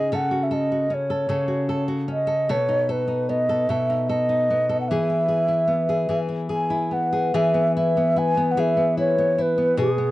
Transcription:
Already playing: C#3 C#4 D#4 G#4 D#5
0.12 C#3 A4 F#5
0.31 F#4
0.43 E5
0.51 A4 D#5
0.72 F#4
0.90 C#4 C#5
1.10 A4
1.29 C#3 A4
1.48 F#4
1.69 A4
1.88 F#4
2.08 C#4
2.12 D#5
2.27 A4
2.49 B2 A4 C#5
2.69 D#4
2.89 A4 B4
3.08 D#4
3.29 B3 D#5
3.49 A4
3.69 B2 A4 E5
3.90 D#4
4.09 A4 D#5
4.29 D#4
4.50 B3
4.69 A4
4.81 F#5
4.88 E3 G#4 E5
5.10 E4
5.28 G#4
5.48 E4
5.68 B3
5.89 G#4
6.09 E3 G#4
6.29 E4
6.49 G#4 G#5
6.70 E4
6.91 B3 F#5
7.13 G#4
7.34 E3 G#4 E5
7.54 B3
7.76 E4 E5
7.97 B3
8.16 E4 G#5
8.37 B3
8.51 F#5
8.57 E3 G#4 E5
8.77 B3
8.97 E4 C#5
9.18 B3
9.38 E4 B4
9.58 B3
9.77 B2 G#4
9.98 B3

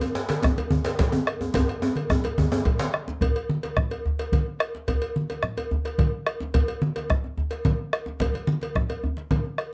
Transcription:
0.01 cowbell, djembe tone
0.15 djembe slap
0.29 bombo rim, cowbell, djembe slap, high conga
0.42 bombo rim, bombo low, djembe tone, low conga
0.57 cowbell, djembe slap, high conga, djembe tone
0.71 djembe slap, high conga, djembe tone, djembe bass
0.85 cowbell, djembe slap
0.99 bombo low, cowbell, djembe slap, low conga
1.12 djembe tone, high conga
1.27 bombo rim, cowbell, djembe slap
1.40 bombo rim, djembe tone
1.54 bombo low, cowbell, high conga, djembe tone, low conga, djembe bass
1.69 cowbell
1.82 djembe tone
1.96 cowbell, djembe slap, high conga
2.10 bombo rim, bombo low, high conga, djembe tone, low conga
2.24 bombo rim, cowbell, djembe slap, djembe tone
2.38 djembe slap, djembe tone, high conga, djembe bass
2.52 bombo rim, djembe tone
2.65 bombo low, cowbell, low conga
2.79 bombo rim, djembe slap, high conga
2.94 bombo rim, high conga
3.08 djembe slap, djembe tone
3.21 bombo rim, bombo low, cowbell, low conga, djembe bass
3.36 cowbell
3.49 high conga
3.63 cowbell, djembe slap
3.77 bombo rim, bombo low, low conga
3.91 cowbell, djembe tone
4.06 djembe slap, high conga, djembe bass
4.19 bombo rim, cowbell, djembe slap
4.32 bombo low, cowbell, high conga, low conga
4.60 bombo rim, cowbell
4.75 djembe slap
4.88 bombo rim, bombo low, cowbell, low conga, djembe bass
5.02 cowbell
5.16 high conga
5.30 cowbell, djembe slap
5.43 bombo rim, low conga
5.57 cowbell, djembe tone
5.71 djembe slap, high conga, djembe bass
5.85 bombo rim, cowbell, djembe slap
5.98 bombo low, cowbell, high conga, low conga
6.27 bombo rim, cowbell
6.40 djembe slap, djembe tone
6.54 bombo rim, bombo low, cowbell, low conga, djembe bass
6.68 cowbell
6.82 high conga
6.96 cowbell, djembe slap
7.10 bombo rim, bombo low, low conga
7.24 djembe tone
7.38 djembe slap, high conga, djembe bass
7.51 bombo rim, cowbell, djembe slap
7.65 bombo low, cowbell, high conga, low conga
7.93 bombo rim, cowbell
8.06 djembe slap, djembe tone
8.20 bombo rim, bombo low, cowbell, djembe bass, low conga
8.34 cowbell, high conga
8.47 high conga
8.61 cowbell, djembe slap, high conga
8.75 bombo rim, bombo low, high conga, low conga
8.89 bombo rim, cowbell, djembe tone, high conga
9.03 bombo rim, djembe bass
9.17 bombo rim, djembe slap, high conga
9.31 bombo low, cowbell, high conga, low conga
9.44 high conga
9.58 bombo rim, cowbell

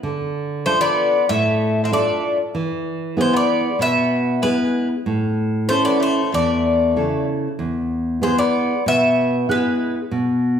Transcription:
0.03 D3
0.66 A3 D4 F4 A4 C5
0.81 B3 D5
1.29 A2 A3 E5
1.84 C4 E5
1.92 A3 D4 F4 A4 D5
2.55 E3
3.17 G#3 B3 E4 G#4
3.21 C5
3.33 B3 D5
3.79 B2 B3 E5
4.42 G#3 B3 E4 G#4 B4
5.06 A2
5.69 A3 C#4 E4 A4 C5
5.85 B3 D5
6.00 A3 C5
6.32 E2 A3 D5
6.96 C#3 E4 A4
7.59 E2
8.21 G#3 B3 E4 G#4 C5
8.38 B3 D5
8.86 B2 B3 E5
9.49 G#3 B3 E4 G#4 B4
10.11 B2

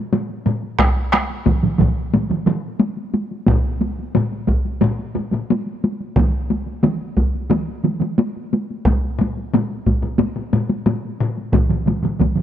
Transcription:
0.13 taiko low-mid, taiko high
0.29 taiko high
0.46 taiko low-mid, taiko high
0.63 taiko high
0.79 taiko rim, taiko, taiko high
0.96 taiko high
1.12 taiko rim, taiko high
1.30 taiko high
1.46 taiko, taiko low-mid, taiko mid, taiko high
1.63 taiko low-mid, taiko mid, taiko high
1.78 taiko, taiko low-mid, taiko mid, taiko high
2.13 taiko low-mid, taiko mid, taiko high
2.30 taiko low-mid, taiko mid, taiko high
2.46 taiko low-mid, taiko mid, taiko high
2.80 taiko high
2.97 taiko high
3.14 taiko high
3.31 taiko high
3.47 taiko, taiko low-mid, taiko high
3.64 taiko high
3.81 taiko high
3.99 taiko high
4.15 taiko low-mid, taiko high
4.32 taiko high
4.47 taiko, taiko high
4.65 taiko high
4.81 taiko low-mid, taiko high
4.99 taiko high
5.15 taiko low-mid, taiko high
5.33 taiko low-mid, taiko high
5.50 taiko high
5.67 taiko high
5.84 taiko high
6.00 taiko high
6.16 taiko, taiko mid, taiko high
6.33 taiko high
6.50 taiko high
6.66 taiko high
6.83 taiko mid, taiko high
7.01 taiko high
7.17 taiko, taiko high
7.35 taiko high
7.50 taiko mid, taiko high
7.68 taiko high
7.84 taiko mid, taiko high
8.00 taiko mid, taiko high
8.19 taiko high
8.36 taiko high
8.53 taiko high
8.70 taiko high
8.85 taiko, taiko low-mid, taiko high
9.04 taiko high
9.19 taiko low-mid, taiko high
9.37 taiko high
9.54 taiko low-mid, taiko high
9.71 taiko high
9.86 taiko, taiko low-mid, taiko high
10.02 taiko low-mid, taiko high
10.19 taiko low-mid, taiko high
10.36 taiko low-mid, taiko high
10.53 taiko low-mid, taiko high
10.69 taiko high
10.86 taiko low-mid, taiko high
11.04 taiko high
11.20 taiko low-mid
11.37 taiko high
11.52 taiko, taiko low-mid, taiko mid, taiko high
11.69 taiko low-mid, taiko mid, taiko high
11.86 taiko low-mid, taiko mid, taiko high
12.03 taiko low-mid, taiko mid, taiko high
12.19 taiko, taiko low-mid, taiko mid, taiko high
12.36 taiko low-mid, taiko mid

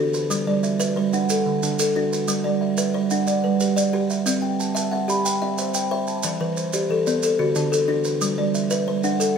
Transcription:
Already playing: D4 F#4 A4
0.14 B4, maracas
0.30 G3, maracas
0.47 G3 D5
0.63 E5, maracas
0.80 B4 E5, maracas
0.96 G3 B4 C5
1.13 D4 F#5, maracas
1.30 A4, maracas
1.46 D3
1.63 D3 D4, maracas
1.79 A4, maracas
1.96 D4 F#4
2.12 B4, maracas
2.28 G3, maracas
2.44 G3 D5
2.61 E5
2.77 B4 E5, maracas
2.94 G3 B4 C5
3.10 D4 F#5, maracas
3.27 D5, maracas
3.44 G3 B4
3.60 G4 B4, maracas
3.76 D5, maracas
3.93 G4 B4
4.10 E5, maracas
4.26 C4, maracas
4.42 C4 G5
4.60 A5, maracas
4.75 E5 A5, maracas
4.91 C4 E5 F#5
5.08 G4 B5, maracas
5.25 G5, maracas
5.42 C4 E5
5.58 C5 E5, maracas
5.74 G5, maracas
5.91 C5 E5
6.07 A5, maracas
6.23 E3, maracas
6.41 E3 B4
6.57 C5, maracas
6.73 G4 C5, maracas
6.90 E3 G4 A4
7.07 B3 D5, maracas
7.23 A4, maracas
7.39 D3 F#4
7.55 D3 D4, maracas
7.72 A4, maracas
7.88 D4 F#4
8.04 B4, maracas
8.21 G3, maracas
8.38 G3 D5
8.54 E5, maracas
8.70 B4 E5, maracas
8.88 G3 B4 C5
9.04 D4 F#5, maracas
9.20 A4, maracas

